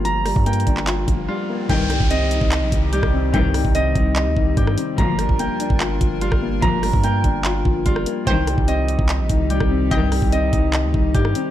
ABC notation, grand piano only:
X:1
M:4/4
L:1/8
Q:1/4=146
K:Cm
V:1 name="Grand piano"
[F,G,B,F] G, B, D F F, G, B, | E, G, C E e E, G, C | E, G, C E e E, G, C | F, G, B, D F F, G, B, |
F, G, B, D F F, G, B, | E, G, C E e E, G, C | E, G, C E e E, G, C |]